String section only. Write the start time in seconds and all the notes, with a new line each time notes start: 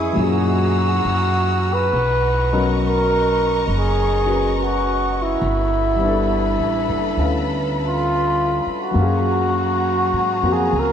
Already playing: E4 B4 C#6 D#6
0.16 G#4 F#5 A#5 E6
1.92 D#5 A#5 C#6
5.41 A4 B4 B5
8.96 F#4 G#4 A#5
10.74 G#5